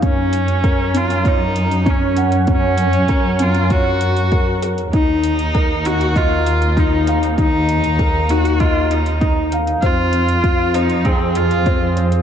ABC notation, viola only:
X:1
M:4/4
L:1/16
Q:1/4=98
K:Ebdor
V:1 name="Viola"
D6 F2 E4 D3 z | D6 F2 G6 z2 | E6 G2 F4 E3 z | E6 G2 F2 E4 z2 |
F6 E2 C2 F4 z2 |]